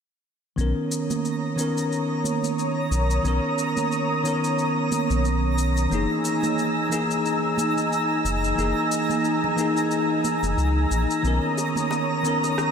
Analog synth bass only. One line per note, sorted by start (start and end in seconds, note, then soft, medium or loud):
0.58 0.73 B1 loud
2.91 3.19 B1 loud
3.24 3.40 B1 medium
5.10 5.87 B1 medium
5.91 6.07 F#1 medium
8.25 8.53 F#1 loud
8.58 8.73 F#1 medium
10.43 10.55 F#1 medium
10.58 10.86 C#2 medium
10.91 11.06 A#1 medium
11.24 11.40 B1 loud